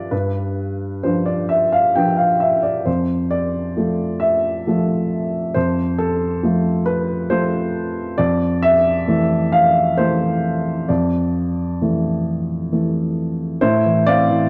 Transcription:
Already playing: F3 D4 B4 D5 F5
0.11 G2 B4
1.03 F3 D4 B4 C5
1.26 D5
1.49 E5
1.72 F5
1.95 F3 D4 B4 G5
2.17 F5
2.40 E5
2.63 D5
2.85 F2 C5
3.31 D5
3.77 F3 A3 A4
4.20 E5
4.67 F3 A3 A4
5.54 F2 C5
5.98 A4
6.43 F3 A3 A4
6.86 B4
7.30 F3 A3 A4 C5
8.18 F2 D5
8.62 E5
9.08 E3 A3 A4
9.52 F5
9.97 E3 A3 A4 C5
10.89 F2 D5
11.81 E3 A3 A4
12.72 E3 A3 A4
13.61 A2 E4 C5
13.86 E3
14.07 C4 D5 F5
14.30 E3

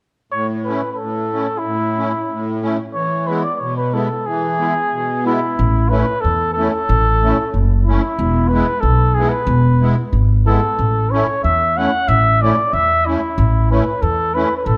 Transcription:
0.31 A2 C#5
0.65 A3 C#4 E4 B4
0.92 A4 B4
0.99 A2
1.32 A3 C#4 E4
1.58 E4
1.65 A2
1.98 A3 C#4 E4
2.31 A2
2.62 A3 C#4 E4
2.94 E3 C#5
3.27 G#3 B3 E4 B4
3.43 D5
3.56 C#5 D5
3.61 B2
3.77 B4
3.93 G#3 B3 E4 A4
4.26 E3 G#4
4.58 G#3 B3 E4
4.92 B2
5.25 G#3 B3 E4
5.59 A1
5.89 A3 C#4 E4 B4
6.21 E2 A4
6.53 A4
6.57 A3 C#4 E4
6.70 A4
6.89 A1
7.23 A3 C#4 E4
7.54 F#1
7.85 A3 C#4 E4
8.19 E1
8.48 B4
8.53 G#3 B3 E4
8.80 B1 A4
9.14 G#3 G#4
9.19 B3 E4
9.29 B4
9.47 E1
9.81 G#3 B3 E4
10.13 G#1
10.46 G#3 B3 E4 A4
10.79 A1
11.10 A3 C#4 E4 C#5
11.44 E2 E5
11.77 A3 C#4 E4 F#5
12.08 A1 E5
12.41 A3 C#4 E4 D5
12.73 E2 E5
13.06 A3 C#4 E4
13.38 A1
13.71 A3 C#4 E4 B4
14.02 E2 A4
14.34 A3 C#4 E4 B4
14.57 B4
14.66 A1 A4

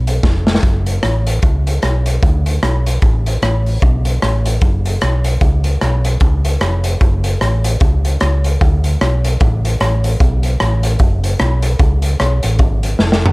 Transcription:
Already playing: B1
0.07 closed hi-hat
0.23 F1, kick, snare
0.47 snare
0.55 snare
0.63 F#1, kick, closed hi-hat
0.86 closed hi-hat
1.03 A1, cross-stick, closed hi-hat
1.27 closed hi-hat
1.42 C#2, kick, closed hi-hat
1.67 closed hi-hat
1.82 B1, cross-stick, closed hi-hat
2.06 closed hi-hat
2.23 D2, kick, closed hi-hat
2.46 closed hi-hat
2.63 B1, cross-stick, closed hi-hat
2.86 closed hi-hat
3.02 A1, kick, closed hi-hat
3.26 closed hi-hat
3.42 A1, cross-stick, closed hi-hat
3.66 open hi-hat
3.82 B1, kick, closed hi-hat
4.05 closed hi-hat
4.22 A1, cross-stick, closed hi-hat
4.46 closed hi-hat
4.61 F#1, kick, closed hi-hat
4.85 closed hi-hat
5.01 B1, cross-stick, closed hi-hat
5.24 closed hi-hat
5.41 C#2, kick, closed hi-hat
5.64 closed hi-hat
5.81 B1, cross-stick, closed hi-hat
6.04 closed hi-hat
6.20 C#2, kick, closed hi-hat
6.45 closed hi-hat
6.61 F1, cross-stick, closed hi-hat
6.84 closed hi-hat
7.01 F#1, kick, closed hi-hat
7.24 closed hi-hat
7.41 A1, cross-stick, closed hi-hat
7.64 closed hi-hat
7.80 C#2, kick, closed hi-hat
8.05 closed hi-hat
8.20 C#2, cross-stick, closed hi-hat
8.44 closed hi-hat
8.61 D2, kick, closed hi-hat
8.84 closed hi-hat
9.01 B1, cross-stick, closed hi-hat
9.24 closed hi-hat
9.40 A1, kick, closed hi-hat
9.65 closed hi-hat
9.80 A1, cross-stick, closed hi-hat
10.04 closed hi-hat
10.20 B1, kick, closed hi-hat
10.43 closed hi-hat
10.60 A1, cross-stick, closed hi-hat
10.83 closed hi-hat
10.99 F#1, kick, closed hi-hat
11.24 closed hi-hat
11.39 B1, cross-stick, closed hi-hat
11.62 closed hi-hat
11.79 C#2, kick, closed hi-hat
12.02 closed hi-hat
12.20 B1, cross-stick, closed hi-hat
12.43 A1, closed hi-hat
12.59 G#1, kick, closed hi-hat
12.83 closed hi-hat
12.99 F1, snare
13.12 snare
13.26 floor tom

